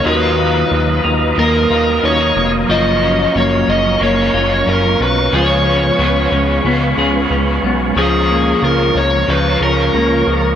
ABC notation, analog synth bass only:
X:1
M:4/4
L:1/8
Q:1/4=91
K:F#
V:1 name="Analog synth bass" clef=bass
D,,2 D,, D,, D,, D,, D,, E,,, | F,,,2 F,,, F,,, F,,, F,,, F,,, B,,, | C,,2 C,, C,, C,, C,, C,, B,,, | C,,2 C,, C,, C,, C,, C,, C,, |]